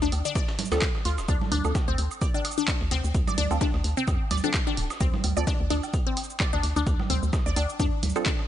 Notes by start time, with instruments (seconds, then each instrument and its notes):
0.02 fm bass D2, synth arpeggio sound D4, snare
0.12 fm bass D2, open hi-hat, tambourine, high woodblock, low woodblock, shaker
0.25 synth arpeggio sound D4, shaker
0.35 synth arpeggio sound D5, kick, snare, tambourine, high woodblock, shaker
0.48 snare, tambourine
0.59 snare, open hi-hat, tambourine, low conga, shaker
0.65 shaker
0.72 fm bass D2, synth stab C4 D4 F4 A4, snare, tambourine, high woodblock, low woodblock, shaker
0.82 kick, snare, clap, tambourine, shaker
0.95 snare, high woodblock
1.05 fm bass D2, synth arpeggio sound F4, open hi-hat, tambourine, shaker
1.18 fm bass D1, snare, high woodblock, shaker
1.28 fm bass D2, synth arpeggio sound D4, kick, tambourine, high woodblock, shaker
1.41 snare, low conga
1.52 fm bass D2, synth arpeggio sound D4, open hi-hat, tambourine, low conga, shaker
1.65 fm bass D2, synth stab C4 D4 F4 A4, high woodblock, shaker
1.75 kick, snare, tambourine, low woodblock, shaker
1.88 fm bass D2, synth arpeggio sound C4, high woodblock
1.98 fm bass D2, open hi-hat, tambourine, shaker
2.11 high woodblock, shaker
2.21 synth arpeggio sound D5, kick, tambourine, shaker
2.34 synth arpeggio sound D4, low woodblock
2.45 open hi-hat, tambourine, high woodblock, shaker
2.51 shaker
2.58 synth arpeggio sound D4, shaker
2.68 kick, snare, clap, tambourine, high woodblock, shaker
2.81 fm bass D2, snare
2.91 fm bass D2, synth arpeggio sound C4, snare, open hi-hat, tambourine, high woodblock, low woodblock
3.04 fm bass D2, shaker
3.14 fm bass D2, kick, tambourine, shaker
3.27 synth arpeggio sound D5, snare, low conga, high woodblock
3.38 fm bass D2, synth arpeggio sound D4, open hi-hat, tambourine, low conga, shaker
3.51 fm bass D2, synth stab C4 D4 F4 A4, high woodblock, low woodblock, shaker
3.61 synth arpeggio sound D4, kick, snare, tambourine, shaker
3.74 fm bass D2, snare, high woodblock
3.84 fm bass D2, open hi-hat, tambourine, shaker
3.97 synth arpeggio sound C4, shaker
4.08 fm bass F2, kick, tambourine, high woodblock, low woodblock, shaker
4.31 fm bass D2, synth arpeggio sound D5, open hi-hat, low conga, high woodblock, shaker
4.37 shaker
4.44 synth stab C4 D4 F4 A4, synth arpeggio sound D4, shaker
4.54 kick, snare, clap, tambourine, high woodblock, shaker
4.67 synth arpeggio sound D4, snare, low woodblock
4.77 fm bass D1, open hi-hat, tambourine
4.90 snare, high woodblock, shaker
5.00 fm bass D2, synth arpeggio sound C4, kick, tambourine, shaker
5.14 snare, low conga, high woodblock
5.24 fm bass D2, open hi-hat, tambourine, low conga, low woodblock, shaker
5.37 fm bass D2, synth stab C4 D4 F4 A4, synth arpeggio sound D5, high woodblock, shaker
5.47 synth arpeggio sound D4, kick, snare, tambourine, shaker
5.60 fm bass D2
5.70 fm bass D2, synth arpeggio sound D4, open hi-hat, tambourine, high woodblock, shaker
5.83 low woodblock, shaker
5.94 kick, tambourine, high woodblock, shaker
6.07 synth arpeggio sound C4
6.17 open hi-hat, tambourine, high woodblock, shaker
6.23 shaker
6.30 shaker
6.40 synth arpeggio sound D5, kick, snare, clap, tambourine, low woodblock, shaker
6.53 fm bass D2, synth arpeggio sound D4, snare, high woodblock
6.63 fm bass D2, snare, open hi-hat, tambourine
6.76 fm bass D2, synth arpeggio sound D4, high woodblock, shaker
6.87 fm bass D2, kick, tambourine, shaker
6.99 snare, low conga, high woodblock, low woodblock
7.10 fm bass D2, synth arpeggio sound C4, open hi-hat, tambourine, low conga, shaker
7.23 fm bass D2, shaker
7.33 kick, snare, tambourine, high woodblock, shaker
7.46 fm bass D2, synth arpeggio sound D5, snare
7.56 fm bass D2, synth arpeggio sound D4, open hi-hat, tambourine, high woodblock, low woodblock, shaker
7.69 shaker
7.80 fm bass F2, synth arpeggio sound D4, kick, tambourine, high woodblock, shaker
8.03 fm bass D2, open hi-hat, low conga, shaker
8.09 shaker
8.16 synth stab C4 D4 F4 A4, high woodblock, low woodblock, shaker
8.26 synth arpeggio sound D4, kick, snare, clap, tambourine, shaker
8.39 snare, high woodblock